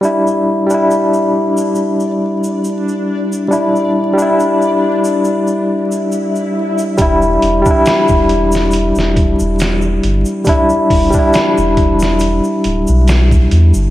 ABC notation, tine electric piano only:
X:1
M:4/4
L:1/16
Q:"Swing 16ths" 1/4=69
K:Em
V:1 name="Tine electric piano"
[G,DE]3 [G,DE]12- [G,DE] | [G,DE]3 [G,DE]12- [G,DE] | [G,DE]3 [G,DE]12- [G,DE] | [G,DE]3 [G,DE]12- [G,DE] |]